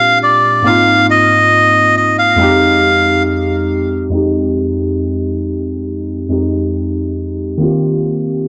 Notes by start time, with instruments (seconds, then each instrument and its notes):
Already playing: synth keys A#2 G#3 C4 D4 F4 G4, melodica F5
0.23 melodica D5
0.62 synth keys G#2 A#3 C4, melodica F5
0.68 synth keys D#4 F4
1.10 melodica D#5
1.97 melodica D#5
2.19 melodica F5
2.36 synth keys F2 G#3 C4
2.41 synth keys D#4 G4
4.10 synth keys F2 G#3 C4
4.15 synth keys D#4 G4
6.29 synth keys F2 G#3 C4 D#4 G4
7.58 synth keys D#3 A#3 C4
7.63 synth keys F4 G4